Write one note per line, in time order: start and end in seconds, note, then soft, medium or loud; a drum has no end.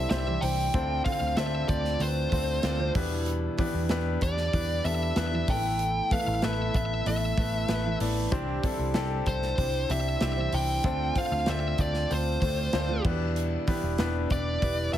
0.00 0.76 G2 medium
0.00 0.26 G3 medium
0.00 0.11 C4 loud
0.00 0.11 D4 loud
0.00 0.26 D4 medium
0.00 0.11 E4 loud
0.00 0.26 E4 medium
0.00 0.11 G4 loud
0.00 0.75 A4 medium
0.00 0.11 C5 loud
0.00 0.25 C5 medium
0.10 0.37 C2 medium
0.10 0.37 C4 medium
0.10 0.38 D4 medium
0.10 0.37 E4 medium
0.10 0.37 G4 medium
0.10 0.38 C5 loud
0.10 0.43 E5 loud
0.10 snare loud
0.10 hi-hat pedal medium
0.10 open hi-hat medium
0.26 0.75 C3 medium
0.26 0.73 E3 medium
0.26 0.74 G3 medium
0.26 0.74 D4 medium
0.26 0.74 E4 medium
0.26 0.74 C5 medium
0.41 0.68 C2 medium
0.41 0.69 C4 medium
0.41 0.69 D4 medium
0.41 0.69 E4 medium
0.41 0.69 G4 medium
0.41 0.69 C5 medium
0.41 1.01 G5 loud
0.41 hi-hat pedal medium
0.41 open hi-hat medium
0.74 1.00 D2 loud
0.74 1.65 A2 medium
0.74 1.04 D3 medium
0.74 1.04 A3 loud
0.74 1.01 C4 loud
0.74 1.05 C4 medium
0.74 1.01 D4 medium
0.74 1.01 F4 medium
0.74 1.05 F4 medium
0.74 1.01 A4 medium
0.74 1.01 C5 loud
0.74 1.06 C5 medium
0.74 kick loud
0.74 hi-hat pedal medium
0.74 open hi-hat medium
1.05 1.37 D3 medium
1.05 1.35 A3 medium
1.05 1.33 C4 medium
1.05 1.36 C4 medium
1.05 1.32 D4 medium
1.05 1.32 F4 medium
1.05 1.37 F4 medium
1.05 1.33 A4 medium
1.05 1.33 C5 medium
1.05 1.38 C5 loud
1.05 1.37 F5 medium
1.05 kick medium
1.05 hi-hat pedal medium
1.05 open hi-hat medium
1.21 1.34 D2 medium
1.36 1.63 D2 loud
1.36 1.98 A3 medium
1.36 1.99 C4 medium
1.36 1.64 C4 loud
1.36 1.64 D4 medium
1.36 1.64 F4 medium
1.36 2.00 F4 medium
1.36 1.64 A4 medium
1.36 1.64 C5 loud
1.36 2.01 C5 medium
1.36 1.68 E5 medium
1.36 snare loud
1.36 hi-hat pedal medium
1.36 open hi-hat medium
1.68 1.95 D2 loud
1.68 1.96 C4 medium
1.68 1.96 D4 medium
1.68 1.96 F4 medium
1.68 1.96 A4 medium
1.68 1.96 C5 medium
1.68 2.02 D5 medium
1.68 kick medium
1.68 hi-hat pedal medium
1.68 open hi-hat medium
1.85 snare soft
1.99 2.26 D2 medium
1.99 2.29 A3 medium
1.99 2.30 C4 medium
1.99 2.27 C4 medium
1.99 2.27 D4 medium
1.99 2.27 F4 medium
1.99 2.31 F4 medium
1.99 2.27 A4 medium
1.99 2.28 B4 medium
1.99 2.92 C5 medium
1.99 2.32 C5 medium
1.99 hi-hat pedal medium
1.99 open hi-hat medium
2.30 2.58 D2 loud
2.30 2.79 A3 medium
2.30 2.78 C4 medium
2.30 2.59 C4 medium
2.30 2.59 D4 medium
2.30 2.78 F4 medium
2.30 2.59 F4 medium
2.30 2.59 A4 medium
2.30 2.59 C5 medium
2.30 2.77 C5 medium
2.30 kick medium
2.30 hi-hat pedal medium
2.30 open hi-hat medium
2.63 2.90 D2 loud
2.63 2.90 C4 medium
2.63 2.90 D4 medium
2.63 2.90 F4 medium
2.63 2.90 A4 medium
2.63 2.90 C5 loud
2.63 snare loud
2.63 hi-hat pedal medium
2.63 open hi-hat loud
2.78 2.93 D3 medium
2.78 2.94 A3 medium
2.78 2.95 C4 medium
2.78 2.95 F4 medium
2.78 2.95 C5 medium
2.94 3.47 E2 medium
2.94 3.87 B2 medium
2.94 3.57 E3 medium
2.94 3.57 G3 medium
2.94 3.48 B3 medium
2.94 3.58 D4 medium
2.94 3.48 D4 medium
2.94 3.59 E4 medium
2.94 3.48 E4 medium
2.94 3.49 G4 medium
2.94 3.49 B4 loud
2.94 3.59 B4 medium
2.94 kick loud
2.94 hi-hat pedal medium
2.94 open hi-hat medium
3.26 hi-hat pedal medium
3.26 open hi-hat medium
3.57 3.90 E3 medium
3.57 3.87 G3 medium
3.57 3.85 B3 medium
3.57 3.89 D4 medium
3.57 3.85 D4 medium
3.57 3.85 E4 medium
3.57 3.90 E4 loud
3.57 3.85 G4 medium
3.57 3.85 B4 loud
3.57 3.90 B4 loud
3.57 kick medium
3.57 hi-hat pedal medium
3.57 open hi-hat medium
3.74 3.87 E2 medium
3.88 4.16 E2 loud
3.88 4.50 G3 medium
3.88 4.17 B3 loud
3.88 4.52 D4 medium
3.88 4.17 D4 loud
3.88 4.17 E4 loud
3.88 4.17 G4 loud
3.88 4.17 B4 loud
3.88 snare loud
3.88 hi-hat pedal medium
3.88 open hi-hat medium
4.21 4.48 E2 medium
4.21 4.48 B3 medium
4.21 4.48 D4 medium
4.21 4.48 E4 medium
4.21 4.48 G4 medium
4.21 4.48 B4 medium
4.21 4.85 D5 medium
4.21 kick medium
4.21 hi-hat pedal medium
4.21 open hi-hat medium
4.37 snare soft
4.52 4.79 E2 loud
4.52 4.83 G3 medium
4.52 4.80 B3 medium
4.52 4.84 D4 medium
4.52 4.80 D4 medium
4.52 4.80 E4 medium
4.52 4.85 E4 medium
4.52 4.80 G4 medium
4.52 4.80 B4 medium
4.52 4.86 B4 medium
4.52 kick medium
4.52 hi-hat pedal medium
4.52 open hi-hat medium
4.84 5.11 E2 loud
4.84 5.32 G3 medium
4.84 5.11 B3 medium
4.84 5.11 D4 medium
4.84 5.31 D4 medium
4.84 5.11 E4 medium
4.84 5.31 E4 medium
4.84 5.12 G4 medium
4.84 5.11 A4 medium
4.84 5.30 B4 medium
4.84 5.16 E5 medium
4.84 hi-hat pedal medium
4.84 open hi-hat medium
5.16 5.43 E2 loud
5.16 5.43 B3 medium
5.16 5.43 D4 medium
5.16 5.43 E4 medium
5.16 5.43 G4 medium
5.16 5.43 B4 loud
5.16 5.50 E5 medium
5.16 snare loud
5.16 hi-hat pedal medium
5.16 open hi-hat medium
5.31 5.47 E3 medium
5.31 5.48 G3 medium
5.31 5.48 D4 medium
5.31 5.48 E4 medium
5.31 5.48 B4 medium
5.47 6.00 A1 medium
5.47 6.09 A2 medium
5.47 6.39 A2 medium
5.47 6.10 E3 medium
5.47 6.39 E3 medium
5.47 6.10 A3 medium
5.47 6.01 A3 medium
5.47 6.01 B3 medium
5.47 6.11 E4 medium
5.47 6.01 E4 medium
5.47 6.01 A4 medium
5.47 6.11 A4 medium
5.47 6.01 B4 medium
5.47 6.11 B4 medium
5.47 6.14 G5 loud
5.47 kick medium
5.47 hi-hat pedal medium
5.47 open hi-hat medium
5.79 hi-hat pedal medium
5.79 open hi-hat loud
6.10 6.42 A2 medium
6.10 6.43 E3 medium
6.10 6.41 A3 medium
6.10 6.38 A3 medium
6.10 6.38 B3 medium
6.10 6.38 E4 medium
6.10 6.42 E4 medium
6.10 6.38 A4 medium
6.10 6.43 A4 loud
6.10 6.38 B4 medium
6.10 6.43 B4 loud
6.10 6.41 F5 medium
6.10 kick medium
6.10 hi-hat pedal medium
6.10 open hi-hat medium
6.28 6.40 A1 loud
6.42 6.69 A1 loud
6.42 6.69 A3 medium
6.42 6.69 B3 medium
6.42 6.70 E4 medium
6.42 6.69 A4 medium
6.42 7.07 A4 medium
6.42 6.69 B4 loud
6.42 7.07 B4 medium
6.42 6.75 E5 medium
6.42 snare loud
6.42 hi-hat pedal medium
6.42 open hi-hat medium
6.74 7.00 A1 medium
6.74 7.01 A3 medium
6.74 7.01 B3 medium
6.74 7.01 E4 medium
6.74 7.01 A4 medium
6.74 7.01 B4 medium
6.74 7.07 E5 medium
6.74 kick medium
6.74 hi-hat pedal medium
6.74 open hi-hat medium
7.06 7.32 A1 medium
7.06 7.36 A3 medium
7.06 7.33 A3 medium
7.06 7.32 B3 medium
7.06 7.33 E4 medium
7.06 7.37 E4 medium
7.06 7.33 A4 medium
7.06 7.38 A4 medium
7.06 7.33 B4 medium
7.06 7.39 B4 medium
7.06 7.98 E5 medium
7.06 hi-hat pedal medium
7.06 open hi-hat medium
7.37 7.63 A1 medium
7.37 7.85 A3 medium
7.37 7.64 A3 medium
7.37 7.64 B3 medium
7.37 7.64 E4 medium
7.37 7.84 E4 medium
7.37 7.64 A4 medium
7.37 7.84 A4 medium
7.37 7.64 B4 medium
7.37 7.83 B4 medium
7.37 kick medium
7.37 hi-hat pedal medium
7.37 open hi-hat medium
7.68 7.95 A1 medium
7.68 7.95 A3 medium
7.68 7.95 B3 medium
7.68 7.95 E4 medium
7.68 7.96 A4 medium
7.68 7.95 B4 loud
7.68 snare medium
7.68 hi-hat pedal medium
7.68 open hi-hat medium
7.84 8.31 A2 medium
7.84 8.31 E3 medium
7.84 8.32 A3 medium
7.84 8.32 E4 medium
7.84 8.32 A4 medium
7.84 8.32 B4 medium
8.00 8.26 A1 medium
8.00 8.27 A3 medium
8.00 8.27 B3 medium
8.00 8.27 E4 medium
8.00 8.27 A4 medium
8.00 8.27 D5 medium
8.00 hi-hat pedal medium
8.00 open hi-hat medium
8.31 8.58 C2 loud
8.31 8.62 C3 medium
8.31 9.23 C3 medium
8.31 8.62 E3 medium
8.31 9.23 G3 medium
8.31 8.63 G3 medium
8.31 8.58 C4 loud
8.31 8.58 D4 loud
8.31 8.63 D4 loud
8.31 8.59 E4 loud
8.31 8.64 E4 medium
8.31 8.58 G4 loud
8.31 8.59 C5 loud
8.31 8.64 C5 loud
8.31 kick loud
8.31 hi-hat pedal medium
8.31 open hi-hat loud
8.63 8.95 C3 medium
8.63 8.95 E3 medium
8.63 8.93 G3 medium
8.63 8.90 C4 medium
8.63 8.90 D4 medium
8.63 8.94 D4 loud
8.63 8.90 E4 medium
8.63 8.96 E4 loud
8.63 8.90 G4 medium
8.63 8.91 A4 loud
8.63 8.96 C5 loud
8.63 kick medium
8.63 hi-hat pedal medium
8.63 open hi-hat medium
8.79 8.92 C2 loud
8.94 9.21 C2 loud
8.94 9.57 G3 medium
8.94 9.21 C4 loud
8.94 9.21 D4 loud
8.94 9.59 D4 medium
8.94 9.21 E4 loud
8.94 9.22 G4 loud
8.94 9.21 A4 loud
8.94 9.60 C5 medium
8.94 snare loud
8.94 hi-hat pedal medium
8.94 open hi-hat medium
9.26 9.52 C2 medium
9.26 9.53 C4 medium
9.26 9.53 D4 medium
9.26 9.53 E4 medium
9.26 9.53 G4 medium
9.26 9.53 C5 medium
9.26 9.92 C5 medium
9.26 kick medium
9.26 hi-hat pedal medium
9.26 open hi-hat medium
9.42 snare soft
9.58 9.84 C2 loud
9.58 9.88 G3 medium
9.58 9.85 C4 medium
9.58 9.85 D4 medium
9.58 9.89 D4 medium
9.58 9.84 E4 medium
9.58 9.90 E4 medium
9.58 9.85 G4 medium
9.58 9.85 C5 medium
9.58 9.91 C5 medium
9.58 kick medium
9.58 hi-hat pedal medium
9.58 open hi-hat medium
9.89 10.15 C2 loud
9.89 10.37 G3 medium
9.89 10.16 C4 medium
9.89 10.16 D4 medium
9.89 10.37 D4 medium
9.89 10.16 E4 medium
9.89 10.36 E4 medium
9.89 10.16 G4 medium
9.89 10.16 C5 medium
9.89 10.35 C5 medium
9.89 10.22 E5 medium
9.89 hi-hat pedal medium
9.89 open hi-hat medium
10.21 10.47 C2 medium
10.21 10.48 C4 medium
10.21 10.48 D4 medium
10.21 10.48 E4 medium
10.21 10.48 G4 medium
10.21 10.48 C5 loud
10.21 10.55 E5 loud
10.21 snare loud
10.21 hi-hat pedal medium
10.21 open hi-hat medium
10.36 10.85 C3 medium
10.36 10.84 E3 medium
10.36 10.84 G3 medium
10.36 10.84 D4 medium
10.36 10.84 E4 medium
10.36 10.84 C5 medium
10.52 10.79 C2 loud
10.52 10.79 C4 medium
10.52 10.80 D4 medium
10.52 10.80 E4 medium
10.52 10.79 G4 medium
10.52 10.79 C5 medium
10.52 11.19 G5 loud
10.52 hi-hat pedal medium
10.52 open hi-hat medium
10.84 11.10 D2 loud
10.84 11.14 D3 medium
10.84 11.75 D3 medium
10.84 11.75 A3 medium
10.84 11.15 A3 loud
10.84 11.11 C4 loud
10.84 11.15 C4 medium
10.84 11.11 D4 medium
10.84 11.11 F4 medium
10.84 11.16 F4 medium
10.84 11.11 A4 loud
10.84 11.11 C5 loud
10.84 11.16 C5 medium
10.84 kick loud
10.84 hi-hat pedal medium
10.84 open hi-hat medium
11.15 11.47 D3 medium
11.15 11.45 A3 medium
11.15 11.42 C4 medium
11.15 11.46 C4 loud
11.15 11.42 D4 medium
11.15 11.42 F4 medium
11.15 11.47 F4 loud
11.15 11.42 A4 medium
11.15 11.42 C5 medium
11.15 11.48 C5 loud
11.15 11.49 F5 medium
11.15 kick medium
11.15 hi-hat pedal medium
11.15 open hi-hat medium
11.32 11.45 D2 loud
11.46 11.73 D2 loud
11.46 12.07 A3 medium
11.46 11.74 C4 medium
11.46 11.74 D4 medium
11.46 11.74 F4 medium
11.46 11.74 A4 medium
11.46 11.74 C5 loud
11.46 11.81 E5 medium
11.46 snare loud
11.46 hi-hat pedal medium
11.46 open hi-hat medium
11.78 12.05 D2 loud
11.78 12.05 C4 medium
11.78 12.05 D4 medium
11.78 12.05 F4 medium
11.78 12.05 A4 medium
11.78 12.05 C5 medium
11.78 12.12 D5 medium
11.78 kick medium
11.78 hi-hat pedal medium
11.78 open hi-hat medium
11.94 snare soft
12.09 12.37 D2 loud
12.09 12.39 A3 medium
12.09 12.41 C4 medium
12.09 12.37 C4 medium
12.09 12.37 D4 medium
12.09 12.37 F4 medium
12.09 12.41 F4 medium
12.09 12.37 A4 medium
12.09 12.37 C5 medium
12.09 12.43 C5 medium
12.09 13.02 C5 medium
12.09 hi-hat pedal medium
12.09 open hi-hat medium
12.40 12.68 D2 loud
12.40 12.88 A3 medium
12.40 12.88 C4 medium
12.40 12.68 C4 medium
12.40 12.68 D4 medium
12.40 12.68 F4 medium
12.40 12.87 F4 medium
12.40 12.68 A4 medium
12.40 12.68 C5 medium
12.40 12.87 C5 medium
12.40 kick medium
12.40 hi-hat pedal medium
12.40 open hi-hat medium
12.73 12.99 D2 loud
12.73 13.00 C4 medium
12.73 13.00 D4 medium
12.73 13.00 F4 medium
12.73 13.00 A4 medium
12.73 13.00 C5 loud
12.73 snare loud
12.73 hi-hat pedal medium
12.73 open hi-hat medium
12.88 13.04 D3 medium
12.88 13.04 A3 medium
12.88 13.05 C4 medium
12.88 13.05 F4 medium
12.88 13.04 C5 medium
13.04 13.56 E2 loud
13.04 13.95 B2 medium
13.04 13.67 E3 medium
13.04 13.67 G3 medium
13.04 13.57 B3 medium
13.04 13.58 D4 medium
13.04 13.67 D4 medium
13.04 13.58 E4 medium
13.04 13.68 E4 medium
13.04 13.58 G4 medium
13.04 13.58 B4 loud
13.04 13.68 B4 medium
13.04 kick loud
13.04 crash medium
13.36 hi-hat pedal medium
13.36 open hi-hat medium
13.67 13.99 E3 medium
13.67 13.97 G3 medium
13.67 13.94 B3 medium
13.67 13.94 D4 medium
13.67 13.98 D4 medium
13.67 13.94 E4 medium
13.67 13.99 E4 loud
13.67 13.94 G4 medium
13.67 13.94 B4 loud
13.67 14.00 B4 loud
13.67 kick medium
13.67 hi-hat pedal medium
13.67 open hi-hat medium
13.83 13.96 E1 loud
13.98 14.25 E1 loud
13.98 14.61 G3 medium
13.98 14.25 B3 loud
13.98 14.25 D4 loud
13.98 14.61 D4 medium
13.98 14.26 E4 loud
13.98 14.63 E4 medium
13.98 14.25 G4 loud
13.98 14.26 B4 loud
13.98 14.63 B4 medium
13.98 snare loud
13.98 hi-hat pedal medium
13.98 open hi-hat medium
14.30 14.56 E1 loud
14.30 14.57 B3 medium
14.30 14.57 D4 medium
14.30 14.57 E4 medium
14.30 14.57 G4 medium
14.30 14.90 D5 medium
14.30 kick medium
14.30 hi-hat pedal medium
14.30 open hi-hat medium
14.61 14.88 E1 loud
14.61 14.92 G3 medium
14.61 14.89 B3 medium
14.61 14.93 D4 medium
14.61 14.89 D4 medium
14.61 14.89 E4 medium
14.61 14.94 E4 medium
14.61 14.89 G4 medium
14.61 14.89 B4 medium
14.61 14.95 B4 medium
14.61 kick medium
14.61 hi-hat pedal medium
14.61 open hi-hat medium
14.93 14.98 E1 loud
14.93 14.98 G3 medium
14.93 14.98 B3 medium
14.93 14.98 D4 medium
14.93 14.98 E4 medium
14.93 14.98 G4 medium
14.93 14.98 A4 medium
14.93 14.98 E5 loud
14.93 hi-hat pedal medium
14.93 open hi-hat medium